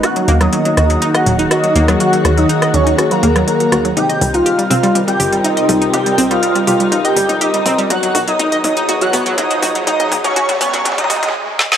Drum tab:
HH |x-x-x-x-x-x-x-x-x-x-x-x-x-x-x-x-|x-x-x-x-x-x-x-x-x-x-x-x-x-x-x-x-|x-x-o-x-x-x-o-x-x-x-o-x-x-x-o-x-|x-x-o-x-x-x-o-x-x-x-o-x-x-x-o-x-|
SD |r-----r-----r-----r-----r-----r-|----r-----r-----r-----r-----r---|--------------------------------|--------------------------------|
T2 |--------------------------------|--------------------------------|o-----o-----o---o-----------o---|o-----------o---o-----o-----o---|

HH |x-x-o-x-x-x-o-x-x-x-o-x-x-x-o-x-|x-x-o-x-x-x-o-x-x-x-o-x---------|
SD |--------------------------------|----------------------------o-o-|
T2 |o---o---o---o---o---o---o---o---|o-o-o-o-o-o-o-o-oooooooo--------|